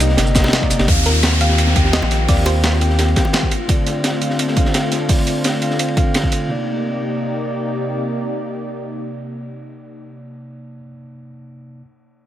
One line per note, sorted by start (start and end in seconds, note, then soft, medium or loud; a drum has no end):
0.00 0.17 C2 loud
0.00 0.35 C3 loud
0.00 0.35 A#3 medium
0.00 0.84 A#3 medium
0.00 0.36 D#4 medium
0.00 0.85 D#4 medium
0.00 0.85 G4 medium
0.00 0.49 C5 medium
0.00 0.62 D5 loud
0.00 0.36 D#5 loud
0.00 cross-stick medium
0.00 closed hi-hat medium
0.00 ride medium
0.00 shaker medium
0.10 snare soft
0.17 0.52 G1 medium
0.17 cross-stick soft
0.17 snare loud
0.17 closed hi-hat loud
0.17 ride medium
0.27 shaker soft
0.35 0.59 C3 loud
0.35 0.60 A#3 medium
0.35 0.60 D#4 medium
0.35 0.60 D#5 loud
0.35 kick loud
0.35 snare medium
0.35 snare soft
0.35 closed hi-hat medium
0.35 ride medium
0.35 shaker medium
0.40 snare medium
0.40 ride medium
0.44 cross-stick soft
0.44 snare medium
0.44 ride medium
0.44 high bongo medium
0.48 snare loud
0.48 ride medium
0.53 snare loud
0.53 closed hi-hat medium
0.61 0.86 C3 medium
0.61 0.86 A#3 medium
0.61 0.86 D#4 medium
0.61 0.86 D5 loud
0.61 kick medium
0.61 ride medium
0.70 0.79 G1 loud
0.70 snare soft
0.70 closed hi-hat medium
0.70 ride medium
0.70 shaker medium
0.79 0.87 G1 medium
0.79 snare loud
0.79 ride medium
0.87 1.75 D#2 medium
0.87 1.38 D#3 medium
0.87 3.49 A#3 medium
0.87 1.38 C4 medium
0.87 3.49 C4 medium
0.87 6.46 F4 medium
0.87 3.49 G4 medium
0.87 1.39 G4 medium
0.87 1.39 F5 loud
0.87 kick loud
0.87 closed hi-hat medium
0.87 ride medium
0.87 downlifter medium
1.06 1.38 A#4 loud
1.06 snare soft
1.06 closed hi-hat medium
1.06 ride medium
1.23 snare loud
1.23 closed hi-hat medium
1.23 ride medium
1.40 1.73 D#3 medium
1.40 1.74 C4 medium
1.40 1.74 G4 medium
1.40 1.95 F5 loud
1.40 1.74 G5 loud
1.40 closed hi-hat medium
1.40 ride medium
1.49 snare soft
1.58 closed hi-hat medium
1.58 ride medium
1.67 snare soft
1.67 high bongo soft
1.75 2.01 D#2 loud
1.75 2.26 D#3 loud
1.75 2.26 C4 medium
1.75 2.27 G4 medium
1.75 2.27 G5 loud
1.75 kick loud
1.75 closed hi-hat medium
1.75 ride medium
1.85 snare soft
1.93 2.30 D#5 loud
1.93 snare loud
1.93 closed hi-hat medium
1.93 ride medium
2.02 2.27 A#1 medium
2.02 high bongo medium
2.11 snare soft
2.11 closed hi-hat medium
2.11 ride medium
2.27 3.15 D#2 loud
2.27 2.78 D#3 medium
2.27 2.79 C4 medium
2.27 2.79 G4 medium
2.27 2.47 D5 loud
2.27 2.80 F5 loud
2.27 kick loud
2.27 closed hi-hat medium
2.27 open hi-hat medium
2.37 ride soft
2.46 3.47 C5 medium
2.46 closed hi-hat medium
2.46 ride medium
2.46 high bongo medium
2.64 snare loud
2.64 closed hi-hat medium
2.64 ride medium
2.80 3.14 D#3 medium
2.80 3.14 C4 medium
2.80 3.15 G4 medium
2.80 3.15 G5 loud
2.80 closed hi-hat medium
2.80 ride medium
2.90 snare soft
2.99 snare loud
2.99 closed hi-hat medium
2.99 ride medium
3.08 ride soft
3.16 3.50 D#3 medium
3.16 3.50 C4 medium
3.16 3.50 G4 medium
3.16 3.51 G5 loud
3.16 kick loud
3.16 snare loud
3.16 closed hi-hat medium
3.16 ride medium
3.25 high bongo soft
3.33 snare loud
3.33 closed hi-hat medium
3.33 ride medium
3.43 kick medium
3.51 6.47 A3 medium
3.51 6.47 C4 medium
3.51 6.47 D4 medium
3.51 closed hi-hat medium
3.51 ride medium
3.68 4.19 D3 medium
3.68 4.19 C4 medium
3.68 4.20 F4 medium
3.68 4.20 D5 loud
3.68 kick loud
3.68 closed hi-hat medium
3.68 ride medium
3.86 snare soft
3.86 closed hi-hat medium
3.86 ride medium
4.04 snare loud
4.04 closed hi-hat medium
4.04 ride medium
4.21 4.54 D3 medium
4.21 4.55 C4 medium
4.21 4.55 F4 medium
4.21 4.55 F5 medium
4.21 closed hi-hat medium
4.21 ride medium
4.30 snare soft
4.39 closed hi-hat medium
4.39 ride medium
4.48 snare soft
4.55 5.06 D3 medium
4.55 5.07 C4 medium
4.55 5.07 F4 medium
4.55 5.08 F5 loud
4.55 kick loud
4.55 closed hi-hat medium
4.55 ride medium
4.65 snare soft
4.74 snare loud
4.74 closed hi-hat medium
4.74 ride medium
4.92 snare soft
4.92 closed hi-hat medium
4.92 ride medium
5.08 5.59 D3 medium
5.08 5.59 C4 medium
5.08 5.60 F4 medium
5.08 5.60 D5 loud
5.08 kick loud
5.08 closed hi-hat medium
5.08 open hi-hat medium
5.19 ride soft
5.27 closed hi-hat medium
5.27 ride medium
5.44 snare loud
5.44 closed hi-hat medium
5.44 ride medium
5.61 5.94 D3 medium
5.61 5.95 C4 medium
5.61 5.95 F4 medium
5.61 5.95 F5 medium
5.61 closed hi-hat medium
5.61 ride medium
5.70 snare soft
5.79 closed hi-hat medium
5.79 ride medium
5.88 ride soft
5.96 6.47 D3 medium
5.96 6.47 C4 medium
5.96 6.48 F4 medium
5.96 6.48 F5 medium
5.96 kick loud
5.96 closed hi-hat medium
5.96 ride medium
6.14 snare loud
6.14 closed hi-hat medium
6.14 ride medium
6.23 kick medium
6.32 closed hi-hat medium
6.32 ride medium
6.48 10.75 C3 medium
6.48 10.06 C3 medium
6.48 10.76 A#3 medium
6.48 10.06 A#3 medium
6.48 10.06 D#4 medium
6.48 10.76 D#4 medium
6.48 10.06 G4 medium
6.48 10.06 D5 medium
6.48 10.77 D5 medium